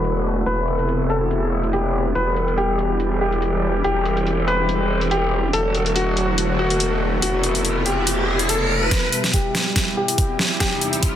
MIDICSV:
0, 0, Header, 1, 6, 480
1, 0, Start_track
1, 0, Key_signature, 1, "minor"
1, 0, Tempo, 422535
1, 526, Time_signature, 4, 2, 24, 8
1, 12673, End_track
2, 0, Start_track
2, 0, Title_t, "Grand piano"
2, 0, Program_c, 0, 0
2, 0, Note_on_c, 0, 71, 83
2, 437, Note_off_c, 0, 71, 0
2, 526, Note_on_c, 0, 71, 84
2, 1158, Note_off_c, 0, 71, 0
2, 1246, Note_on_c, 0, 69, 87
2, 1877, Note_off_c, 0, 69, 0
2, 1966, Note_on_c, 0, 67, 82
2, 2370, Note_off_c, 0, 67, 0
2, 2446, Note_on_c, 0, 71, 91
2, 2850, Note_off_c, 0, 71, 0
2, 2926, Note_on_c, 0, 67, 89
2, 3557, Note_off_c, 0, 67, 0
2, 3646, Note_on_c, 0, 67, 83
2, 4278, Note_off_c, 0, 67, 0
2, 4366, Note_on_c, 0, 67, 88
2, 4998, Note_off_c, 0, 67, 0
2, 5086, Note_on_c, 0, 71, 87
2, 5717, Note_off_c, 0, 71, 0
2, 5806, Note_on_c, 0, 67, 86
2, 6210, Note_off_c, 0, 67, 0
2, 6286, Note_on_c, 0, 69, 93
2, 6690, Note_off_c, 0, 69, 0
2, 6766, Note_on_c, 0, 66, 89
2, 7398, Note_off_c, 0, 66, 0
2, 7486, Note_on_c, 0, 66, 88
2, 8118, Note_off_c, 0, 66, 0
2, 8207, Note_on_c, 0, 66, 91
2, 8838, Note_off_c, 0, 66, 0
2, 8927, Note_on_c, 0, 67, 91
2, 9558, Note_off_c, 0, 67, 0
2, 9646, Note_on_c, 0, 69, 86
2, 10050, Note_off_c, 0, 69, 0
2, 10126, Note_on_c, 0, 71, 94
2, 10530, Note_off_c, 0, 71, 0
2, 10606, Note_on_c, 0, 67, 90
2, 11238, Note_off_c, 0, 67, 0
2, 11326, Note_on_c, 0, 67, 85
2, 11958, Note_off_c, 0, 67, 0
2, 12046, Note_on_c, 0, 67, 89
2, 12673, Note_off_c, 0, 67, 0
2, 12673, End_track
3, 0, Start_track
3, 0, Title_t, "Supersaw synth"
3, 0, Program_c, 1, 81
3, 0, Note_on_c, 1, 50, 77
3, 0, Note_on_c, 1, 54, 70
3, 0, Note_on_c, 1, 57, 68
3, 0, Note_on_c, 1, 66, 85
3, 507, Note_off_c, 1, 50, 0
3, 507, Note_off_c, 1, 54, 0
3, 507, Note_off_c, 1, 66, 0
3, 525, Note_on_c, 1, 59, 69
3, 526, Note_on_c, 1, 48, 76
3, 526, Note_on_c, 1, 64, 84
3, 2408, Note_off_c, 1, 57, 0
3, 2427, Note_off_c, 1, 48, 0
3, 2427, Note_off_c, 1, 64, 0
3, 2446, Note_on_c, 1, 52, 75
3, 2446, Note_on_c, 1, 55, 67
3, 2447, Note_on_c, 1, 67, 83
3, 4327, Note_off_c, 1, 59, 0
3, 4366, Note_on_c, 1, 60, 71
3, 6248, Note_off_c, 1, 52, 0
3, 6248, Note_off_c, 1, 55, 0
3, 6248, Note_off_c, 1, 67, 0
3, 6267, Note_off_c, 1, 60, 0
3, 6286, Note_on_c, 1, 50, 77
3, 6286, Note_on_c, 1, 54, 72
3, 6286, Note_on_c, 1, 57, 73
3, 6286, Note_on_c, 1, 66, 85
3, 8187, Note_off_c, 1, 50, 0
3, 8187, Note_off_c, 1, 54, 0
3, 8187, Note_off_c, 1, 66, 0
3, 8206, Note_on_c, 1, 48, 78
3, 8206, Note_on_c, 1, 59, 70
3, 8206, Note_on_c, 1, 64, 83
3, 10088, Note_off_c, 1, 57, 0
3, 10107, Note_off_c, 1, 48, 0
3, 10107, Note_off_c, 1, 59, 0
3, 10107, Note_off_c, 1, 64, 0
3, 10126, Note_on_c, 1, 47, 77
3, 10126, Note_on_c, 1, 55, 71
3, 10126, Note_on_c, 1, 64, 70
3, 10126, Note_on_c, 1, 67, 83
3, 12027, Note_off_c, 1, 47, 0
3, 12027, Note_off_c, 1, 55, 0
3, 12046, Note_on_c, 1, 40, 78
3, 12046, Note_on_c, 1, 48, 73
3, 12046, Note_on_c, 1, 55, 69
3, 12673, Note_off_c, 1, 40, 0
3, 12673, Note_off_c, 1, 48, 0
3, 12673, Note_off_c, 1, 55, 0
3, 12673, Note_off_c, 1, 64, 0
3, 12673, Note_off_c, 1, 67, 0
3, 12673, End_track
4, 0, Start_track
4, 0, Title_t, "Wobble bass"
4, 0, Program_c, 2, 39
4, 0, Note_on_c, 2, 28, 82
4, 504, Note_off_c, 2, 28, 0
4, 526, Note_on_c, 2, 28, 81
4, 2424, Note_off_c, 2, 28, 0
4, 2446, Note_on_c, 2, 28, 83
4, 4344, Note_off_c, 2, 28, 0
4, 4366, Note_on_c, 2, 28, 83
4, 6264, Note_off_c, 2, 28, 0
4, 6286, Note_on_c, 2, 28, 85
4, 8184, Note_off_c, 2, 28, 0
4, 8206, Note_on_c, 2, 28, 82
4, 10104, Note_off_c, 2, 28, 0
4, 12673, End_track
5, 0, Start_track
5, 0, Title_t, "Riser"
5, 0, Program_c, 3, 103
5, 6286, Note_on_c, 3, 60, 71
5, 10126, Note_off_c, 3, 60, 0
5, 10126, Note_on_c, 3, 60, 77
5, 12673, Note_off_c, 3, 60, 0
5, 12673, End_track
6, 0, Start_track
6, 0, Title_t, "Drums"
6, 46, Note_on_c, 9, 42, 71
6, 160, Note_off_c, 9, 42, 0
6, 526, Note_on_c, 9, 42, 67
6, 640, Note_off_c, 9, 42, 0
6, 766, Note_on_c, 9, 42, 46
6, 880, Note_off_c, 9, 42, 0
6, 896, Note_on_c, 9, 42, 46
6, 1006, Note_off_c, 9, 42, 0
6, 1006, Note_on_c, 9, 42, 70
6, 1120, Note_off_c, 9, 42, 0
6, 1246, Note_on_c, 9, 42, 45
6, 1360, Note_off_c, 9, 42, 0
6, 1486, Note_on_c, 9, 42, 70
6, 1600, Note_off_c, 9, 42, 0
6, 1855, Note_on_c, 9, 42, 45
6, 1966, Note_off_c, 9, 42, 0
6, 1966, Note_on_c, 9, 42, 71
6, 2080, Note_off_c, 9, 42, 0
6, 2446, Note_on_c, 9, 42, 70
6, 2559, Note_off_c, 9, 42, 0
6, 2686, Note_on_c, 9, 42, 47
6, 2799, Note_off_c, 9, 42, 0
6, 2815, Note_on_c, 9, 42, 47
6, 2926, Note_off_c, 9, 42, 0
6, 2926, Note_on_c, 9, 42, 69
6, 3039, Note_off_c, 9, 42, 0
6, 3166, Note_on_c, 9, 42, 46
6, 3279, Note_off_c, 9, 42, 0
6, 3406, Note_on_c, 9, 42, 71
6, 3520, Note_off_c, 9, 42, 0
6, 3775, Note_on_c, 9, 42, 45
6, 3886, Note_off_c, 9, 42, 0
6, 3886, Note_on_c, 9, 42, 70
6, 4000, Note_off_c, 9, 42, 0
6, 4366, Note_on_c, 9, 42, 73
6, 4480, Note_off_c, 9, 42, 0
6, 4606, Note_on_c, 9, 42, 48
6, 4720, Note_off_c, 9, 42, 0
6, 4736, Note_on_c, 9, 42, 47
6, 4846, Note_off_c, 9, 42, 0
6, 4846, Note_on_c, 9, 42, 72
6, 4960, Note_off_c, 9, 42, 0
6, 5086, Note_on_c, 9, 42, 48
6, 5200, Note_off_c, 9, 42, 0
6, 5326, Note_on_c, 9, 42, 73
6, 5439, Note_off_c, 9, 42, 0
6, 5695, Note_on_c, 9, 42, 47
6, 5806, Note_off_c, 9, 42, 0
6, 5806, Note_on_c, 9, 42, 72
6, 5920, Note_off_c, 9, 42, 0
6, 6287, Note_on_c, 9, 42, 77
6, 6400, Note_off_c, 9, 42, 0
6, 6527, Note_on_c, 9, 42, 49
6, 6640, Note_off_c, 9, 42, 0
6, 6656, Note_on_c, 9, 42, 50
6, 6766, Note_off_c, 9, 42, 0
6, 6766, Note_on_c, 9, 42, 77
6, 6880, Note_off_c, 9, 42, 0
6, 7007, Note_on_c, 9, 42, 50
6, 7120, Note_off_c, 9, 42, 0
6, 7246, Note_on_c, 9, 42, 76
6, 7360, Note_off_c, 9, 42, 0
6, 7616, Note_on_c, 9, 42, 50
6, 7726, Note_off_c, 9, 42, 0
6, 7726, Note_on_c, 9, 42, 76
6, 7840, Note_off_c, 9, 42, 0
6, 8206, Note_on_c, 9, 42, 79
6, 8320, Note_off_c, 9, 42, 0
6, 8446, Note_on_c, 9, 42, 51
6, 8560, Note_off_c, 9, 42, 0
6, 8576, Note_on_c, 9, 42, 53
6, 8686, Note_off_c, 9, 42, 0
6, 8686, Note_on_c, 9, 42, 78
6, 8800, Note_off_c, 9, 42, 0
6, 8926, Note_on_c, 9, 42, 53
6, 9040, Note_off_c, 9, 42, 0
6, 9166, Note_on_c, 9, 42, 81
6, 9280, Note_off_c, 9, 42, 0
6, 9535, Note_on_c, 9, 42, 50
6, 9646, Note_off_c, 9, 42, 0
6, 9646, Note_on_c, 9, 42, 80
6, 9759, Note_off_c, 9, 42, 0
6, 10126, Note_on_c, 9, 36, 88
6, 10126, Note_on_c, 9, 38, 46
6, 10126, Note_on_c, 9, 42, 79
6, 10239, Note_off_c, 9, 36, 0
6, 10239, Note_off_c, 9, 38, 0
6, 10239, Note_off_c, 9, 42, 0
6, 10366, Note_on_c, 9, 42, 53
6, 10479, Note_off_c, 9, 42, 0
6, 10495, Note_on_c, 9, 38, 43
6, 10495, Note_on_c, 9, 42, 52
6, 10606, Note_off_c, 9, 42, 0
6, 10606, Note_on_c, 9, 36, 93
6, 10606, Note_on_c, 9, 42, 76
6, 10609, Note_off_c, 9, 38, 0
6, 10719, Note_off_c, 9, 36, 0
6, 10719, Note_off_c, 9, 42, 0
6, 10846, Note_on_c, 9, 38, 50
6, 10846, Note_on_c, 9, 42, 53
6, 10960, Note_off_c, 9, 38, 0
6, 10960, Note_off_c, 9, 42, 0
6, 11086, Note_on_c, 9, 36, 93
6, 11086, Note_on_c, 9, 38, 53
6, 11086, Note_on_c, 9, 42, 79
6, 11199, Note_off_c, 9, 36, 0
6, 11199, Note_off_c, 9, 38, 0
6, 11199, Note_off_c, 9, 42, 0
6, 11455, Note_on_c, 9, 42, 52
6, 11566, Note_off_c, 9, 42, 0
6, 11566, Note_on_c, 9, 36, 95
6, 11566, Note_on_c, 9, 42, 78
6, 11679, Note_off_c, 9, 36, 0
6, 11679, Note_off_c, 9, 42, 0
6, 11806, Note_on_c, 9, 38, 54
6, 11919, Note_off_c, 9, 38, 0
6, 12046, Note_on_c, 9, 36, 91
6, 12046, Note_on_c, 9, 38, 58
6, 12046, Note_on_c, 9, 42, 76
6, 12159, Note_off_c, 9, 36, 0
6, 12159, Note_off_c, 9, 38, 0
6, 12159, Note_off_c, 9, 42, 0
6, 12285, Note_on_c, 9, 42, 52
6, 12399, Note_off_c, 9, 42, 0
6, 12415, Note_on_c, 9, 42, 50
6, 12526, Note_off_c, 9, 42, 0
6, 12526, Note_on_c, 9, 36, 100
6, 12526, Note_on_c, 9, 42, 79
6, 12639, Note_off_c, 9, 36, 0
6, 12639, Note_off_c, 9, 42, 0
6, 12673, End_track
0, 0, End_of_file